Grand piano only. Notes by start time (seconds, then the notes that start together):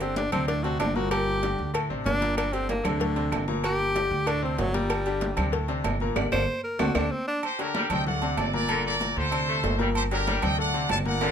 0.01 D3 D4 G4
0.33 C3 C4 D4
0.48 A2 A3 A4
0.65 C3 C4 D4
0.96 A#2 A#3 A#4
1.11 A#2 A#3 A#4
1.42 D3 D4 G4
1.74 A2 A3 A4
1.90 C3 C4 D4
2.21 A#2 A#3 A#4
2.52 D3 D4 G4
2.84 C3 C4 D4
3.00 A2 A3 A4
3.16 C3 C4 D4
3.48 A#2 A#3 A#4
3.64 A#2 A#3 A#4
3.95 D3 D4 G4
4.26 A2 A3 A4
4.42 C3 C4 D4
4.74 A#2 A#3 A#4
5.06 D3 D4 G4
5.37 C3 C4 D4
5.52 A2 A3 A4
5.69 C3 C4 D4
6.01 A#2 A#3 A#4
6.16 G3 A#3 D4
6.32 G3 A#3 D4
6.79 A3 C4 D4
6.95 A3 C4 D4
7.59 D3 D4 G4
7.91 C3 C4 D4
8.07 A2 A3 A4
8.22 C3 C4 D4
8.53 A#2 A#3 A#4
8.69 A#2 A#3 A#4
9.00 A#2 A#3 A#4
9.31 C3 C4 D4
9.63 A2 A3 A4
9.78 A#2 A#3 A#4
10.11 D3 D4 G4
10.43 C3 C4 D4
10.58 A2 A3 A4
10.74 C3 C4 D4
11.05 A#2 A#3 A#4
11.21 A#2 A#3 A#4